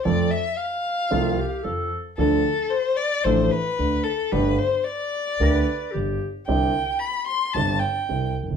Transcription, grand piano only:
X:1
M:4/4
L:1/16
Q:1/4=112
K:Gmix
V:1 name="Grand piano" clef=bass
[F,,F,A,CA]2 z6 [C,,C,F,A,CA]2 z2 [F,,F,]2 z2 | [D,,D,F,A,DA]2 z6 [A,,,A,,F,A,DA]2 z2 [D,,D,]2 z2 | [G,,,G,,D,A,B,G]2 z6 [D,,D,A,B,G]2 z2 [G,,,G,,]2 z2 | [C,,C,D,G,CG]2 z6 [G,,,G,,D,G,CG]2 z2 [C,,C,]2 z/2 ^F,,,/2 G,,,/2 z/2 |]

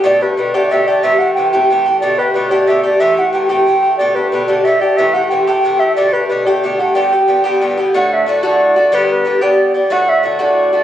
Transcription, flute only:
X:1
M:6/8
L:1/8
Q:3/8=122
K:G
V:1 name="Flute"
d B B d e d | e f g g3 | d B B d e d | e f g g3 |
d B B d e d | e f g g2 e | d B B d z f | g4 z2 |
f e d d3 | B B2 d2 d | f e d d3 |]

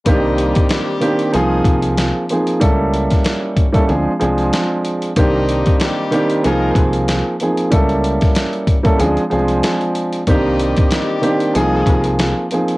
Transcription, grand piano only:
X:1
M:4/4
L:1/16
Q:"Swing 16ths" 1/4=94
K:Cm
V:1 name="Grand piano"
[E,B,CDG]6 [E,B,CDG]2 [F,B,CEA]6 [F,B,CEA]2 | [G,B,^C=E=A]6 z [G,B,CEA] [F,_A,=CD_A] z [F,A,CDA]6 | [E,B,CDG]6 [E,B,CDG]2 [F,B,CEA]6 [F,B,CEA]2 | [G,B,^C=E=A]6 z [G,B,CEA] [F,_A,=CD_A] z [F,A,CDA]6 |
[E,B,CDG]6 [E,B,CDG]2 [F,B,CEA]6 [F,B,CEA]2 |]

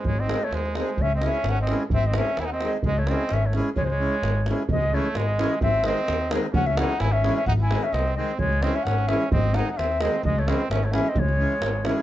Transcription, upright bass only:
X:1
M:2/4
L:1/8
Q:"Swing 16ths" 1/4=130
K:C#m
V:1 name="Upright bass" clef=bass
G,,,2 D,,2 | C,,2 G,,,2 | G,,,2 D,,2 | C,,2 G,,,2 |
C,,2 G,,,2 | C,,2 G,,,2 | G,,,2 D,,2 | C,,2 G,,,2 |
G,,,2 ^B,,,2 | C,,2 G,,,2 | G,,,2 D,,2 | C,,2 G,,,2 |
C,,2 G,,,2 |]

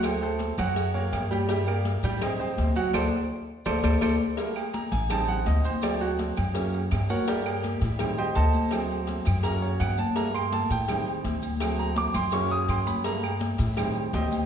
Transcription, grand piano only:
X:1
M:4/4
L:1/8
Q:1/4=166
K:Dphr
V:1 name="Grand piano"
[A,Ac] [A,Ac]2 [^F,^F^f]2 [^A,^A^c]2 [G,Gg] | [G,Gg] [B,Bd]2 [G,Gg] [Cce] [Cce]2 [^F,^F^f] | [Acd] z3 [Acd] [Acd] [Acd] z | [K:Gm] z2 b _a =a ^f e c |
d ^F z4 z [F^A^c^f] | [GBdg]3 z2 [Gceg] [Acea]2- | [Acea] z3 ^a ^c ^f =a | b c' a g2 z3 |
z b d' c' ^c' e' =c' =b | b2 z4 [Gceg]2 |]
V:2 name="Grand piano"
z8 | z8 | z8 | [K:Gm] [G,A,B,] z3 [G,CE]4 |
[^F,A,C]3 z [F,^A,^C] z3 | [G,B,A]3 z [E,G,C] z3 | [^F,A,C]3 z [F,^A,^C]3 z | [G,A,B,]4 [E,G,C]3 z |
[^F,A,C]3 z [F,^A,^C]4 | [G,A,B,] z3 [E,G,C]3 z |]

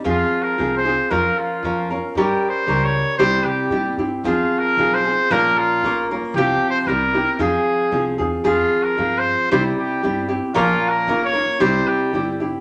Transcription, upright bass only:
X:1
M:2/4
L:1/8
Q:1/4=114
K:Fm
V:1 name="Upright bass" clef=bass
F,, z C,,2 | F,, z F,,2 | G,, z D,,2 | C,, C, B,, G,, |
F,, z =B,,,2 | B,,, z B,,,2 | C,, z C,,2 | F,, z C,, =E,, |
F,, z G,,2 | C,, z G,,2 | B,,, z B,,,2 | C,, z G,,,2 |]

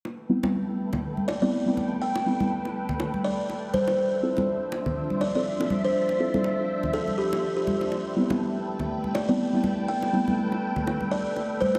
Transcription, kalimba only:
X:1
M:4/4
L:1/16
Q:"Swing 16ths" 1/4=122
K:Am
V:1 name="Kalimba"
z8 z2 d d2 z3 | g4 z6 d2 z2 c c | z8 z2 d d2 z2 c- | c z6 z A2 G2 z G3 |
z8 z2 d d2 z3 | g4 z6 d2 z2 c c |]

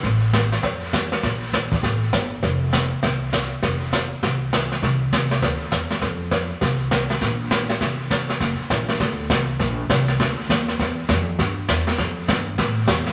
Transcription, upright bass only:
X:1
M:4/4
L:1/8
Q:"Swing" 1/4=201
K:Fmix
V:1 name="Upright bass" clef=bass
A,,,4 F,,4 | B,,,4 A,,,2 G,,,2 | F,,,4 C,,4 | F,,,4 C,,4 |
C,,2 C,,2 D,,2 =E,,2 | F,,4 C,,4 | B,,,4 F,,,4 | _G,,, z B,,,2 D,,2 C,,2 |
B,,,2 C,,2 D,,2 E,,2 | =E,,2 F,,2 G,,2 E,,2 | F,,2 G,,2 A,,2 =E,,2 |]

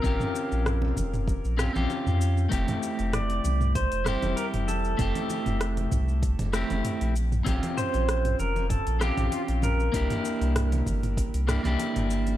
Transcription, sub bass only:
X:1
M:4/4
L:1/16
Q:"Swing 16ths" 1/4=97
K:F
V:1 name="Sub bass" clef=bass
B,,, z2 B,,,3 F,,,3 B,,,2 B,,, z F,,3 | F,,, z2 F,,,3 C,,3 F,,,2 F,,, z F,,,3 | F,,, z2 F,,,3 C,,3 F,,,2 F,,, z B,,,3 | B,,, z2 B,,,3 F,,,3 B,,,2 B,,, z B,,,3 |
C,, z2 C,,3 G,,,3 C,,2 C,, z G,,,3 |]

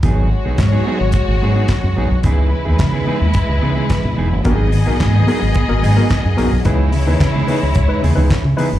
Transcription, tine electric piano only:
X:1
M:4/4
L:1/16
Q:1/4=109
K:G#m
V:1 name="Tine electric piano"
z16 | z16 | [B,FA] z [G,,D,] [B,FA] [FA] [G,,D,] [B,FA] z2 [B,FA] [G,,D,] [B,FA] z2 [B,FA] z | [DEB] z [C,G,] [DEB] [EB] [C,G,] [DEB] z2 [DEB] [C,G,] [DEB] z2 [DEB] z |]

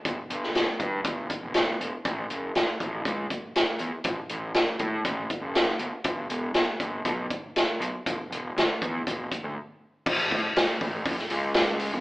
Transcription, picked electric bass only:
X:1
M:4/4
L:1/16
Q:1/4=120
K:Glyd
V:1 name="Picked electric bass" clef=bass
G,,, z G,,,2 E,,, z G,,2 G,,,2 z E,,,3 E,,, z | A,,,2 F,,,2 A,,, z A,,,2 C,,2 z4 E,, z | A,,, z A,,,2 F,,, z A,,2 A,,,2 z F,,,3 G,,, z | G,,,2 E,,,2 G,,, z G,,,2 B,,,2 z4 B,,, z |
E,,, z E,,,2 D,, z E,,2 E,,,2 z D,, z4 | [K:A] A,,,2 A,, z C,, z A,,,2 F,,, z C,,4- C,, F,,, |]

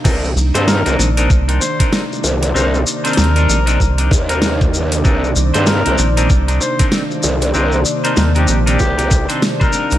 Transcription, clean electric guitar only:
X:1
M:4/4
L:1/16
Q:"Swing 16ths" 1/4=96
K:Cm
V:1 name="Clean electric guitar"
[CDEB]2 z [CDEc]2 [CDEB]2 [CDEB] z [CDEB] z [CDEB]2 z3 | [CDEB]2 z [CDEc]2 [CDEB]2 [CDEB] z [CDEB] z [CDEB]2 z3 | [CDEB]2 z [CDEc]2 [CDEB]2 [CDEB] z [CDEB] z [CDEB]2 z3 | [CDEB]2 z [CDEc]2 [CDEB]2 [CDEB] z [CDEB] z [CDEc] z [CDEc] [CDEB]2 |]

